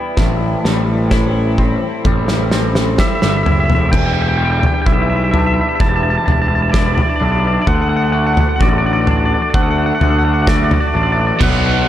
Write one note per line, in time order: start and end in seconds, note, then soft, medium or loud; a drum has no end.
0.00 0.20 G3 medium
0.00 0.18 B3 medium
0.00 0.14 E4 medium
0.00 1.10 E4 medium
0.00 0.14 B4 medium
0.00 0.16 D5 medium
0.00 3.90 G5 medium
0.17 0.54 A1 medium
0.17 2.52 A2 medium
0.17 3.90 E4 medium
0.17 3.90 A4 medium
0.17 3.90 C5 medium
0.17 kick medium
0.17 snare soft
0.65 1.74 A1 medium
0.65 2.03 G3 medium
0.65 snare medium
1.11 3.44 E4 medium
1.11 kick loud
1.11 snare medium
1.58 2.51 C4 medium
1.58 kick medium
2.05 2.96 A1 medium
2.05 2.98 G3 medium
2.05 kick loud
2.05 mid tom medium
2.28 snare medium
2.51 3.93 C4 medium
2.51 snare medium
2.75 snare medium
2.98 3.93 G3 medium
2.98 3.07 E5 medium
2.98 kick loud
2.98 snare medium
3.08 3.15 E5 medium
3.15 3.22 E5 medium
3.22 3.44 G1 medium
3.22 3.29 E5 medium
3.22 snare medium
3.29 3.37 E5 medium
3.37 3.43 E5 medium
3.43 3.68 F#1 medium
3.43 3.93 E4 medium
3.43 3.51 E5 medium
3.43 floor tom medium
3.52 3.59 E5 medium
3.60 3.65 E5 medium
3.65 3.73 E5 medium
3.70 3.91 E1 medium
3.70 floor tom medium
3.75 3.81 E5 medium
3.81 3.89 E5 medium
3.89 6.27 E2 medium
3.89 3.91 E5 medium
3.89 3.99 G5 medium
3.89 kick loud
3.93 4.65 E1 medium
3.93 11.37 D4 medium
3.93 7.64 G4 medium
3.93 7.64 B4 medium
3.93 7.64 E5 medium
3.93 floor tom medium
3.93 crash medium
3.99 4.06 G5 medium
4.06 4.13 G5 medium
4.13 4.21 G5 medium
4.22 4.28 G5 medium
4.28 4.36 G5 medium
4.37 5.79 G3 medium
4.37 4.44 G5 medium
4.45 4.51 G5 medium
4.52 4.59 G5 medium
4.60 4.66 G5 medium
4.60 floor tom medium
4.66 4.74 G5 medium
4.74 4.81 G5 medium
4.82 4.86 G5 medium
4.86 5.59 B1 medium
4.86 6.72 E4 medium
4.86 4.93 E5 medium
4.86 kick loud
4.93 5.01 E5 medium
5.02 5.09 E5 medium
5.10 5.16 E5 medium
5.16 5.23 E5 medium
5.24 5.31 E5 medium
5.31 6.25 D4 medium
5.31 5.39 E5 medium
5.31 floor tom medium
5.39 5.46 E5 medium
5.46 5.53 E5 medium
5.54 5.61 E5 medium
5.61 5.68 E5 medium
5.69 5.75 E5 medium
5.75 5.81 E5 medium
5.80 6.17 E1 medium
5.80 7.67 G3 medium
5.80 5.88 A5 loud
5.80 kick loud
5.89 5.95 A5 medium
5.96 6.03 A5 medium
6.03 6.10 A5 medium
6.10 6.17 A5 medium
6.18 6.25 A5 medium
6.26 7.00 E1 medium
6.26 7.19 D4 medium
6.26 6.32 A5 medium
6.26 floor tom medium
6.32 6.39 A5 medium
6.42 6.48 A5 medium
6.48 6.55 A5 medium
6.55 6.62 A5 medium
6.62 6.69 A5 medium
6.69 7.67 E4 medium
6.69 6.79 D5 medium
6.69 6.71 A5 medium
6.74 kick loud
6.74 snare medium
6.79 6.86 D5 medium
6.86 6.94 D5 medium
6.95 7.02 D5 medium
6.95 floor tom medium
7.03 7.09 D5 medium
7.09 7.15 D5 medium
7.16 7.23 D5 medium
7.20 7.57 B1 medium
7.20 7.67 D4 medium
7.25 7.32 D5 medium
7.32 7.39 D5 medium
7.40 7.47 D5 medium
7.47 7.54 D5 medium
7.54 7.61 D5 medium
7.62 7.67 D5 medium
7.67 8.40 D2 medium
7.67 10.00 D3 medium
7.67 11.88 F#4 medium
7.67 11.37 A4 medium
7.67 7.75 F#5 loud
7.67 9.53 F#5 medium
7.67 kick loud
7.67 floor tom medium
7.75 7.81 F#5 medium
7.82 7.89 F#5 medium
7.89 7.96 F#5 medium
7.97 8.04 F#5 medium
8.04 8.12 F#5 medium
8.12 9.53 A3 medium
8.12 8.19 F#5 medium
8.19 8.26 F#5 medium
8.27 8.34 F#5 medium
8.34 8.40 F#5 medium
8.34 floor tom medium
8.40 8.48 F#5 medium
8.49 8.56 F#5 medium
8.56 10.46 F#4 medium
8.56 8.62 F#5 medium
8.61 9.33 A1 medium
8.61 8.69 D5 medium
8.61 kick loud
8.69 8.77 D5 medium
8.78 8.86 D5 medium
8.86 8.93 D5 medium
8.93 9.01 D5 medium
9.01 9.09 D5 medium
9.07 9.99 D4 medium
9.07 floor tom medium
9.11 9.17 D5 medium
9.17 9.25 D5 medium
9.25 9.33 D5 medium
9.34 9.42 D5 medium
9.42 9.50 D5 medium
9.50 9.90 D2 medium
9.50 11.41 A3 medium
9.50 9.54 D5 medium
9.50 kick loud
9.54 11.39 E5 medium
9.54 9.62 F#5 medium
9.63 9.70 F#5 medium
9.70 9.78 F#5 medium
9.78 9.86 F#5 medium
9.86 9.94 F#5 medium
9.95 10.03 F#5 medium
10.01 10.73 D2 medium
10.01 10.93 D4 medium
10.01 10.10 F#5 medium
10.01 floor tom medium
10.10 10.18 F#5 medium
10.19 10.24 F#5 medium
10.25 10.33 F#5 medium
10.34 10.42 F#5 medium
10.42 10.48 F#5 medium
10.47 11.40 F#4 medium
10.47 10.57 D5 medium
10.47 kick loud
10.47 snare medium
10.57 10.64 D5 medium
10.64 10.72 D5 medium
10.71 10.80 D5 medium
10.71 floor tom medium
10.80 10.87 D5 medium
10.88 10.95 D5 medium
10.94 11.30 A1 medium
10.94 11.41 D4 medium
10.94 11.03 D5 medium
11.03 11.11 D5 medium
11.12 11.20 D5 medium
11.20 11.27 D5 medium
11.27 11.35 D5 medium
11.37 11.85 B2 medium
11.37 11.88 B2 medium
11.37 11.86 F#3 medium
11.37 11.87 B3 loud
11.37 11.88 D#4 medium
11.37 11.88 B4 medium
11.37 11.42 D5 medium
11.37 11.88 F#5 medium
11.37 kick loud
11.41 11.88 B1 loud
11.41 11.50 F#5 medium
11.41 floor tom medium
11.41 crash medium
11.51 11.58 F#5 medium
11.58 11.66 F#5 medium
11.66 11.74 F#5 medium
11.74 11.82 F#5 medium
11.82 11.88 F#5 medium